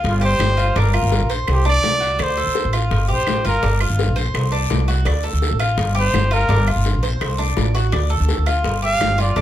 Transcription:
Already playing: F4
0.04 G1 F4, high bongo, long guiro
0.21 G4 C5
0.39 G1, high bongo, low bongo, short guiro, claves
0.57 F4, high bongo, short guiro
0.76 G1 D4 A#4, high bongo, long guiro
0.94 F4, claves
1.02 G1
1.12 high bongo, short guiro
1.20 A#1
1.30 C5, high bongo, short guiro
1.48 C2 G4, high bongo, long guiro, claves
1.65 D4 D5, high bongo
1.83 C2, high bongo, low bongo, short guiro
2.00 F#4, high bongo, short guiro
2.19 D2 D5, high bongo, long guiro, claves
2.23 C5
2.37 A4, high bongo
2.46 D2
2.55 high bongo, short guiro
2.65 A1
2.73 F4, high bongo, short guiro, claves
2.91 G1, high bongo, long guiro
3.08 A#1 G4 C5
3.27 A1, high bongo, low bongo, short guiro, claves
3.45 G1 F4 A#4, high bongo, short guiro
3.63 G1 D4, high bongo, long guiro
3.80 F4, claves
3.90 G1
3.99 high bongo, short guiro
4.08 A#1
4.16 C5, high bongo, short guiro
4.34 C2, high bongo, long guiro, claves
4.52 D4, high bongo
4.70 C2, high bongo, low bongo, short guiro
4.88 F#4, high bongo, short guiro
5.05 D2 D5, high bongo, long guiro, claves
5.23 A4, high bongo
5.33 D2
5.42 high bongo, short guiro
5.51 A1
5.59 F4, high bongo, short guiro, claves
5.77 G1, high bongo, long guiro
5.95 G4 C5
6.13 G1, high bongo, low bongo, short guiro, claves
6.31 F4 A#4, high bongo, short guiro
6.49 G1 D4, high bongo, long guiro
6.67 F4, claves
6.76 G1
6.85 high bongo, short guiro
6.94 A#1
7.03 C5, high bongo, short guiro
7.21 C2, high bongo, long guiro, claves
7.38 D4, high bongo
7.57 A1, high bongo, low bongo, short guiro
7.75 F#4, high bongo, short guiro
7.92 D2 D5, high bongo, long guiro, claves
8.10 A4, high bongo
8.20 D2
8.29 high bongo, short guiro
8.38 D2
8.46 F4, high bongo, short guiro, claves
8.64 G1, high bongo, long guiro
8.82 G4 F5
9.01 G1, high bongo, low bongo, short guiro, claves
9.18 F4 D5, high bongo, short guiro
9.36 G1 D4, high bongo, long guiro

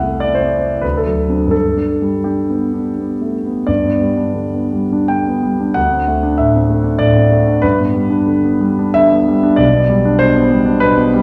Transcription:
Already playing: C2 E4 E5
0.03 A3
0.20 E4 D5
0.35 C5
0.42 C4
0.62 E4
0.81 D2 B4
0.97 A4
1.06 F#3
1.30 C4 D4
1.47 G2
1.51 A4
1.77 D4
2.02 G3
2.24 D4 G4
2.50 B3
2.74 D4
2.99 B3
3.21 A3
3.46 B3
3.67 G2 D5
3.85 B3
4.01 G3
4.17 D4
4.34 D3
4.54 B3
4.73 G3
4.93 D4
5.08 D3 G5
5.27 B3
5.43 G3
5.60 D4
5.74 D2 F#5
5.92 C4
6.08 A3
6.23 D4
6.38 A2 E5
6.55 C4
6.70 A3
6.84 D4
6.99 A2 D5
7.16 C4
7.31 A3
7.47 D4
7.62 G2 B4
7.78 B3
7.94 G3
8.10 D4
8.27 D3
8.44 B3
8.61 G3
8.79 D4
8.94 D3 E5
9.12 B3
9.28 G3
9.43 D4
9.56 B1 D5
9.73 B3
9.89 G3
10.05 D4
10.19 B2 C5
10.35 B3
10.51 G3
10.66 D4
10.80 B2 B4
10.96 B3
11.14 G3

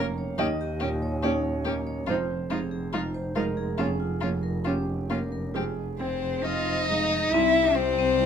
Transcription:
Already playing: F1 F2 F3 A#3 C#4 F5 G5
0.18 C#5
0.38 D#2 A#3 C#4 D#4 G4 D#5
0.61 G4
0.80 A#2 A#3 C#4 G4
1.02 C#5
1.23 A#3 C#4 D#4 G4 C#5
1.65 A#3 C#4 G4 C#5
1.87 C#5
2.07 F1 F2 G#3 D#4 F4 C5
2.50 C3 G#3 D#4 F4 G#4
2.71 G#4
2.93 G#3 D#4 F4
3.14 C5
3.35 G#3 D#4 F4 A#4 D#5
3.57 G#4
3.78 F2 A#3 C#4 F4 G#4
4.00 F4
4.21 F3 A#3 C#4 F4
4.43 A#4
4.64 A#3 C#4 F4 G4
5.10 A#3 C#4 F4 A#4
5.32 A#4
5.54 F2 G#3 C4 F4 G4 G#4
5.98 C3 C4 G#4 C5
6.22 G#4
6.42 C4 D#4 F4 D#5
6.67 C5
6.88 G#3 D#4 F5
7.12 G#4
7.32 C2 C4 E4 E5
7.56 E4
7.63 G4
7.75 C4 C5
7.92 C4
7.99 C4
8.21 E4 C5

